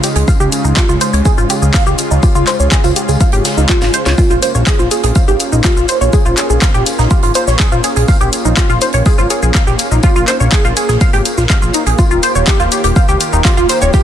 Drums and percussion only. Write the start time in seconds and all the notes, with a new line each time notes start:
0.04 closed hi-hat, tambourine, shaker
0.15 closed hi-hat, shaker
0.28 kick, tambourine, shaker
0.40 shaker
0.52 closed hi-hat, tambourine, shaker
0.65 shaker
0.76 kick, snare, clap, tambourine, shaker
0.89 shaker
1.01 closed hi-hat, tambourine, shaker
1.13 closed hi-hat, shaker
1.25 kick, tambourine, shaker
1.38 shaker
1.50 closed hi-hat, tambourine, shaker
1.62 shaker
1.74 kick, snare, clap, tambourine, shaker
1.87 shaker
1.98 closed hi-hat, tambourine, shaker
2.11 shaker
2.23 kick, tambourine, shaker
2.35 shaker
2.47 clap, closed hi-hat, tambourine, shaker
2.60 shaker
2.71 kick, clap, tambourine, shaker
2.84 tambourine, shaker
2.96 closed hi-hat, shaker
3.09 tambourine, shaker
3.21 kick, closed hi-hat, tambourine, shaker
3.32 closed hi-hat, shaker
3.45 snare, closed hi-hat, tambourine, shaker
3.57 shaker
3.69 kick, snare, clap, tambourine, shaker
3.81 snare, tambourine, shaker
3.94 closed hi-hat, shaker
4.06 snare, tambourine, shaker
4.18 kick, tambourine, shaker
4.30 shaker
4.42 closed hi-hat, tambourine, shaker
4.55 shaker
4.67 kick, snare, clap, tambourine, shaker
4.79 shaker
4.91 closed hi-hat, tambourine, shaker
5.03 closed hi-hat, shaker
5.15 kick, tambourine, shaker
5.28 shaker
5.39 closed hi-hat, tambourine, shaker
5.52 shaker
5.64 kick, snare, clap, tambourine, shaker
5.77 shaker
5.88 closed hi-hat, tambourine, shaker
6.01 shaker
6.13 kick, tambourine, shaker
6.26 shaker
6.37 clap, closed hi-hat, tambourine, shaker
6.50 shaker
6.62 kick, snare, clap, tambourine, shaker
6.74 shaker
6.86 closed hi-hat, tambourine, shaker
6.99 snare, shaker
7.11 kick, tambourine, shaker
7.22 closed hi-hat, shaker
7.34 closed hi-hat, tambourine, shaker
7.47 snare, shaker
7.60 kick, snare, clap, tambourine, shaker
7.72 shaker
7.84 closed hi-hat, tambourine, shaker
7.96 closed hi-hat, shaker
8.08 kick, tambourine, shaker
8.21 shaker
8.33 closed hi-hat, tambourine, shaker
8.45 shaker
8.57 kick, snare, clap, tambourine, shaker
8.70 shaker
8.81 closed hi-hat, tambourine, shaker
8.93 closed hi-hat, shaker
9.06 kick, tambourine, shaker
9.18 shaker
9.30 closed hi-hat, tambourine, shaker
9.43 shaker
9.54 kick, snare, clap, tambourine, shaker
9.67 shaker
9.79 closed hi-hat, tambourine, shaker
9.91 shaker
10.03 kick, tambourine, shaker
10.16 shaker
10.28 clap, closed hi-hat, tambourine, shaker
10.40 shaker
10.52 kick, snare, clap, tambourine, shaker
10.65 shaker
10.77 closed hi-hat, tambourine, shaker
10.89 snare, shaker
11.01 kick, closed hi-hat, tambourine, shaker
11.13 closed hi-hat, shaker
11.25 closed hi-hat, tambourine, shaker
11.38 snare, shaker
11.50 kick, snare, clap, tambourine, shaker
11.62 shaker
11.73 closed hi-hat, tambourine, shaker
11.87 closed hi-hat, shaker
11.99 kick, tambourine, shaker
12.11 shaker
12.23 closed hi-hat, tambourine, shaker
12.35 shaker
12.47 kick, snare, clap, tambourine, shaker
12.60 shaker
12.72 closed hi-hat, tambourine, shaker
12.84 closed hi-hat, shaker
12.96 kick, tambourine, shaker
13.09 shaker
13.20 closed hi-hat, tambourine, shaker
13.33 shaker
13.45 kick, snare, clap, tambourine, shaker
13.57 shaker
13.69 closed hi-hat, tambourine, shaker
13.82 shaker
13.94 kick, tambourine, shaker